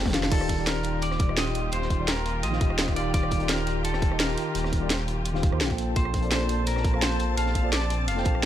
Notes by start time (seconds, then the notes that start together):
Already playing: F1 A#3 C4 F4 A4 C5 G5 A5
0.00 closed hi-hat
0.06 kick, cross-stick, snare, closed hi-hat, high tom
0.09 D#3 D#4, snare, closed hi-hat
0.14 F4 G4 F5, snare, closed hi-hat
0.23 snare
0.30 D#1 D#3 D#4 F4 G4 A4 D5, kick, closed hi-hat, crash
0.41 cross-stick
0.49 kick, closed hi-hat
0.56 D#3 D#4 F4 G4, closed hi-hat
0.60 D5
0.67 A#4, snare, closed hi-hat
0.83 closed hi-hat
1.02 D5, closed hi-hat
1.11 cross-stick, snare
1.19 kick, closed hi-hat
1.27 D#3 D#4 F4 G4, cross-stick
1.31 D#5
1.37 D#5, snare, closed hi-hat
1.47 snare
1.55 D#1, closed hi-hat
1.72 D#1 C5, closed hi-hat
1.82 snare
1.90 kick, closed hi-hat
1.99 D#3 D#4 F4 G4 D5
2.08 A#4, snare, closed hi-hat
2.17 cross-stick
2.26 closed hi-hat
2.43 A#1 D#5, closed hi-hat
2.50 D#3 D#4 F4 G4 F5, snare
2.61 D#1, kick, closed hi-hat
2.70 cross-stick
2.79 snare, closed hi-hat
2.88 kick, cross-stick, snare
2.94 D#3 D#4 F4 G4 D5 F5, closed hi-hat
3.14 D#1 D5, kick, closed hi-hat
3.23 cross-stick
3.31 kick, closed hi-hat
3.38 D#3 D#4 F4 G4, closed hi-hat
3.43 D5
3.48 A#4, snare, closed hi-hat
3.67 closed hi-hat
3.84 A4, closed hi-hat
3.93 cross-stick, snare
4.02 kick, closed hi-hat
4.09 D#3 D#4 F4 G4, cross-stick
4.13 D#5
4.20 A#4, snare, closed hi-hat
4.30 snare
4.38 closed hi-hat
4.55 D#1, closed hi-hat
4.64 cross-stick, snare
4.73 kick, closed hi-hat
4.80 D#3 D#4 F4 G4 D5
4.90 snare, closed hi-hat
5.00 cross-stick
5.08 closed hi-hat
5.25 closed hi-hat
5.33 D#3 D#4 F4 G4 F5, snare
5.43 kick, closed hi-hat
5.51 D#2 D#3 D#4 F4 G4 C5, cross-stick
5.61 A#1, snare, closed hi-hat
5.68 A#3 F4 A4 C5, kick, cross-stick, snare
5.72 G5
5.78 C4 A5, closed hi-hat
5.96 A#1 C5, kick, closed hi-hat
6.05 cross-stick
6.14 kick, closed hi-hat
6.21 A#3 F4 A4 C5, closed hi-hat
6.25 D5
6.32 C5, snare, closed hi-hat
6.49 closed hi-hat
6.67 A#4, closed hi-hat
6.76 cross-stick, snare
6.84 kick, closed hi-hat
6.91 A#3 F4 A4 C5, cross-stick
6.95 F5
7.02 C5, snare, closed hi-hat
7.11 snare
7.19 A#1, closed hi-hat
7.37 A#1 F5, closed hi-hat
7.46 snare
7.55 kick, closed hi-hat
7.63 A#3 F4 A4 C5 D5
7.72 D5, snare, closed hi-hat
7.82 cross-stick
7.90 closed hi-hat
8.08 F1 F5, closed hi-hat
8.15 A#3 F4 A4 C5, snare
8.19 G5
8.25 A#1, kick, closed hi-hat
8.35 cross-stick